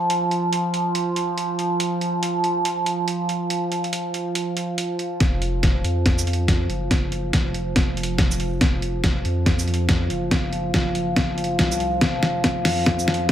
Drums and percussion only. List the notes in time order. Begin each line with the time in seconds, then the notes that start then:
0.10 closed hi-hat
0.31 closed hi-hat
0.53 closed hi-hat
0.74 closed hi-hat
0.95 closed hi-hat
1.16 closed hi-hat
1.38 closed hi-hat
1.59 closed hi-hat
1.80 closed hi-hat
2.01 closed hi-hat
2.23 closed hi-hat
2.44 closed hi-hat
2.65 closed hi-hat
2.86 closed hi-hat
3.08 closed hi-hat
3.29 closed hi-hat
3.50 closed hi-hat
3.72 closed hi-hat
3.84 closed hi-hat
3.93 closed hi-hat
4.14 closed hi-hat
4.35 closed hi-hat
4.57 closed hi-hat
4.78 closed hi-hat
4.99 closed hi-hat
5.20 kick, snare, closed hi-hat
5.42 closed hi-hat
5.63 kick, snare, closed hi-hat
5.84 closed hi-hat
6.06 kick, snare, closed hi-hat
6.18 shaker
6.27 closed hi-hat
6.33 closed hi-hat
6.48 kick, snare, closed hi-hat
6.70 closed hi-hat
6.91 kick, snare, closed hi-hat
7.12 closed hi-hat
7.33 kick, snare, closed hi-hat
7.54 closed hi-hat
7.76 kick, snare, closed hi-hat
7.97 closed hi-hat
8.03 closed hi-hat
8.18 kick, snare, closed hi-hat
8.31 shaker
8.40 closed hi-hat
8.61 kick, snare, closed hi-hat
8.82 closed hi-hat
9.04 kick, snare, closed hi-hat
9.25 closed hi-hat
9.46 kick, snare, closed hi-hat
9.59 shaker
9.68 closed hi-hat
9.74 closed hi-hat
9.89 kick, snare, closed hi-hat
10.10 closed hi-hat
10.31 kick, snare, closed hi-hat
10.53 closed hi-hat
10.74 kick, snare, closed hi-hat
10.95 closed hi-hat
11.16 kick, snare, closed hi-hat
11.38 closed hi-hat
11.44 closed hi-hat
11.59 kick, snare, closed hi-hat
11.71 shaker
11.80 closed hi-hat
12.01 kick, snare, closed hi-hat
12.23 snare, closed hi-hat
12.44 kick, snare, closed hi-hat
12.65 snare, open hi-hat
12.86 kick, snare, closed hi-hat
12.99 shaker
13.08 snare, closed hi-hat
13.14 closed hi-hat